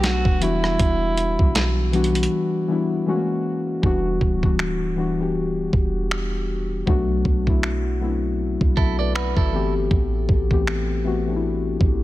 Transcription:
Already playing: 808-style bass B1, synth keys F#3 A3 B3 D4 F#4
0.04 alto saxophone F#4, snare, closed hi-hat
0.25 808-style bass E1, kick
0.40 synth keys E3 G3 B3 D4 F#4, alto saxophone E4, closed hi-hat
0.64 cross-stick
0.79 808-style bass E1, kick, closed hi-hat
1.18 closed hi-hat
1.39 808-style bass B1, kick
1.55 snare, closed hi-hat
1.92 synth keys E3 G3 B3 D4 F#4, closed hi-hat
2.04 closed hi-hat
2.15 closed hi-hat
2.23 closed hi-hat
2.68 synth keys E3 G3 B3 D4 E4
3.06 synth keys E3 G#3 A3 C#4 F#4
3.14 synth keys A#3
3.82 808-style bass E1, synth keys E3 G3 B3 D4 F#4, kick
4.21 808-style bass D1, kick
4.42 synth keys E3 G3 B3 D4 F#4, kick
4.59 finger snap
4.96 synth keys E3 G3 B3 D4 F#4
5.18 synth keys E3 G3 B3 D4 G4
5.73 808-style bass E1, kick
6.11 finger snap
6.86 808-style bass B1, synth keys F#3 A3 B3 D4 F#4, kick
7.25 808-style bass B1, kick
7.46 synth keys F#3 A3 B3 D4 E4, kick
7.63 finger snap
8.00 synth keys F#3 A3 B3 C4 E4
8.09 synth keys D4
8.61 808-style bass B1, kick
8.77 clean electric guitar E4 A4, synth keys E5, kick
8.99 clean electric guitar A4 D5, synth keys B4 D5
9.15 clean electric guitar F#4 B4, synth keys B4, finger snap
9.37 808-style bass G1, clean electric guitar E4 A4, synth keys F#4 A4, kick
9.52 synth keys E3 A3 B3 C4 G4
9.91 808-style bass A1, kick
10.29 808-style bass A1, kick
10.50 synth keys E3 A3 B3 C4 G4, kick
10.67 finger snap
11.04 synth keys E3 A3 B3 C4 F#4
11.26 synth keys E3 A3 B3 C4 D4
11.36 synth keys E4
11.81 808-style bass A1, kick

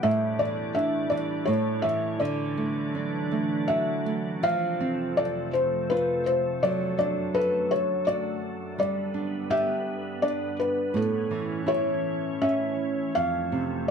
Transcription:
Already playing: ambient pad G3
0.03 nylon-string guitar A2, ambient pad A2 D4, felt piano E5
0.39 nylon-string guitar E3, felt piano D5
0.75 nylon-string guitar D4, felt piano E5
1.10 nylon-string guitar E3, felt piano D5
1.45 nylon-string guitar A2, ambient pad A2 C#4, felt piano C#5
1.82 nylon-string guitar E3, felt piano E5
2.20 nylon-string guitar D3, ambient pad E3 F#3 D4, felt piano D5
2.57 nylon-string guitar A3
2.95 nylon-string guitar D4
3.31 nylon-string guitar A3
3.68 nylon-string guitar F#4, felt piano E5
4.06 nylon-string guitar A3
4.43 ambient pad F2 C3 A3, nylon-string guitar F3, felt piano F5
4.81 nylon-string guitar C4
5.17 nylon-string guitar A4, felt piano D5
5.53 felt piano C5
5.90 nylon-string guitar F4, felt piano B4
6.26 felt piano C5
6.62 ambient pad F#2 D3, nylon-string guitar F#3, felt piano D5
6.99 nylon-string guitar D4, felt piano D5
7.34 nylon-string guitar A4, felt piano B4
7.71 felt piano C#5
8.07 nylon-string guitar F#4, felt piano D5
8.79 ambient pad G2 B3, nylon-string guitar G3, felt piano D5
9.14 nylon-string guitar D4
9.50 nylon-string guitar G4, felt piano E5
10.22 nylon-string guitar D4, felt piano D5
10.60 felt piano B4
10.94 nylon-string guitar A2, ambient pad A2 E3 C#4, felt piano A4
11.31 nylon-string guitar E3
11.66 nylon-string guitar E4, felt piano C#5
12.41 nylon-string guitar C#4, felt piano E5
13.15 nylon-string guitar F2, ambient pad F2 C3 A3, felt piano F5
13.52 nylon-string guitar C3

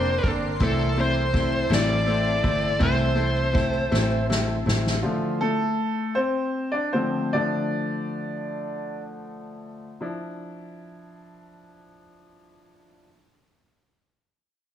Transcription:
Already playing: fingered electric bass F1, steel-string acoustic guitar F3 D4 A#4, grand piano A#3 C4 D4, ambient pad A#4 D5 C6, lead electric guitar C5
0.06 steel-string acoustic guitar C4
0.23 fingered electric bass G1, grand piano A#3 C4 D4, steel-string acoustic guitar D4, kick, ride
0.42 steel-string acoustic guitar A#4
0.60 fingered electric bass C2, steel-string acoustic guitar E3, grand piano A3 C4 E4, ambient pad A4 E5, lead electric guitar A4, kick, ride
0.78 steel-string acoustic guitar C4
0.97 grand piano A3 C4 E4, steel-string acoustic guitar A4
1.01 lead electric guitar C5
1.14 steel-string acoustic guitar C4
1.33 grand piano A3 C4 E4, steel-string acoustic guitar E4, kick, snare
1.52 steel-string acoustic guitar A4
1.70 fingered electric bass A1, steel-string acoustic guitar E3, grand piano A3 C4 E4, snare, ride
1.74 lead electric guitar D5
1.88 steel-string acoustic guitar C4
2.06 grand piano A3 C4 E4, steel-string acoustic guitar A4, ride
2.25 steel-string acoustic guitar C4
2.43 fingered electric bass G1, grand piano A3 C4 E4, steel-string acoustic guitar E4, kick, ride
2.61 steel-string acoustic guitar A4
2.79 fingered electric bass C2, steel-string acoustic guitar E3, grand piano A3 C4 E4, lead electric guitar C5, kick
2.99 steel-string acoustic guitar C4
3.15 grand piano A3 C4 E4, steel-string acoustic guitar A4, ride
3.37 steel-string acoustic guitar C4
3.53 grand piano A3 C4 E4, steel-string acoustic guitar E4, kick, snare
3.74 steel-string acoustic guitar A4
3.92 fingered electric bass A1, steel-string acoustic guitar E3, grand piano A3 C4 E4, snare
4.11 steel-string acoustic guitar C4
4.29 grand piano A3 C4 E4, steel-string acoustic guitar A4, snare
4.49 steel-string acoustic guitar C4
4.66 fingered electric bass A1, grand piano A3 C4 E4, steel-string acoustic guitar E4, snare
4.85 steel-string acoustic guitar A4, snare
5.02 grand piano D3 F3 A3 F4
5.41 grand piano A3 A4
6.15 grand piano C4 C5
6.72 grand piano D4 D5
6.93 grand piano D3 F3 A3 C4 C5
7.33 grand piano D3 F3 A3 D4 D5
10.01 grand piano F3 D4 E4

